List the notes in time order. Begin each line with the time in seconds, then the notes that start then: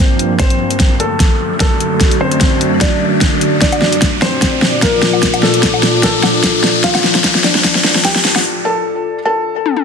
Already playing: G2 F3 A#3 C4 F4 A#4 C5 G5, riser
0.19 closed hi-hat
0.39 F#2 D3 A3 C4 F#4 C5, kick, snare, closed hi-hat
0.50 D5, closed hi-hat
0.71 closed hi-hat
0.80 kick, snare, closed hi-hat
1.00 A3 A4, closed hi-hat
1.20 kick, snare, closed hi-hat
1.42 A5
1.60 A3 A4, kick, snare, closed hi-hat
1.80 closed hi-hat
2.01 kick, snare, closed hi-hat
2.11 closed hi-hat
2.21 C4 C5
2.31 closed hi-hat
2.41 kick, snare, closed hi-hat
2.61 closed hi-hat
2.81 D4 D5, kick, snare, closed hi-hat
3.21 kick, snare, closed hi-hat
3.41 closed hi-hat
3.61 A#2 F3 D4 F4 D5, kick, snare, closed hi-hat
3.72 closed hi-hat, low woodblock
3.82 snare
3.92 D6, closed hi-hat
4.02 kick, snare, closed hi-hat
4.22 C4 C5, snare, closed hi-hat
4.42 kick, snare, closed hi-hat
4.62 snare
4.82 A#3 A#4, kick, snare, closed hi-hat
5.03 snare, closed hi-hat
5.13 low woodblock
5.23 kick, snare, closed hi-hat
5.34 closed hi-hat, low woodblock
5.43 A3 A4, snare
5.54 closed hi-hat
5.63 kick, snare, closed hi-hat
5.74 low woodblock
5.83 snare, closed hi-hat
6.03 A3 A4, kick, snare, closed hi-hat
6.23 snare, low woodblock
6.44 kick, snare, closed hi-hat
6.64 snare, closed hi-hat
6.84 D2 A2 F3 F4 F5, kick, snare, closed hi-hat
6.95 snare, closed hi-hat, low woodblock
7.04 snare
7.15 snare, closed hi-hat
7.24 kick, snare, closed hi-hat
7.34 A5, snare
7.44 D4 D5, snare, closed hi-hat
7.55 snare
7.64 kick, snare, closed hi-hat
7.75 snare
7.84 snare
7.95 snare
8.05 G4 G5, kick, snare, closed hi-hat
8.15 snare
8.25 snare, closed hi-hat
8.36 snare, low woodblock
8.65 A4 A5
9.25 A4 A5
9.66 high tom
9.77 high tom